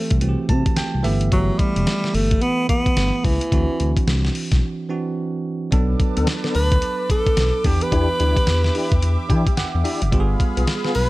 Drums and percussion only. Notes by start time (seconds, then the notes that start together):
0.10 kick, closed hi-hat
0.21 closed hi-hat
0.49 kick, closed hi-hat
0.66 kick, closed hi-hat
0.76 snare, closed hi-hat
1.04 open hi-hat
1.21 closed hi-hat
1.32 kick, closed hi-hat
1.59 kick, closed hi-hat
1.76 closed hi-hat
1.87 snare, closed hi-hat
2.04 snare
2.15 open hi-hat
2.31 kick, closed hi-hat
2.41 closed hi-hat
2.69 kick, closed hi-hat
2.86 kick, closed hi-hat
2.97 snare, closed hi-hat
3.25 kick, open hi-hat
3.41 closed hi-hat
3.52 kick, closed hi-hat
3.80 closed hi-hat
3.97 kick, closed hi-hat
4.07 snare, closed hi-hat
4.25 snare
4.35 open hi-hat
4.52 kick, snare, closed hi-hat
5.72 kick, closed hi-hat
6.00 kick, closed hi-hat
6.17 closed hi-hat
6.27 snare, closed hi-hat
6.44 snare
6.55 open hi-hat
6.72 kick, closed hi-hat
6.82 closed hi-hat
7.10 kick, closed hi-hat
7.27 kick, closed hi-hat
7.37 snare, closed hi-hat
7.64 kick, open hi-hat
7.81 closed hi-hat
7.92 kick, closed hi-hat
8.20 closed hi-hat
8.37 kick, closed hi-hat
8.47 snare, closed hi-hat
8.64 snare
8.75 open hi-hat
8.92 kick, closed hi-hat
9.02 closed hi-hat
9.30 kick, closed hi-hat
9.47 kick, closed hi-hat
9.57 snare, closed hi-hat
9.85 open hi-hat
10.02 closed hi-hat
10.12 kick, closed hi-hat
10.40 kick, closed hi-hat
10.57 closed hi-hat
10.67 snare, closed hi-hat
10.85 snare
10.95 open hi-hat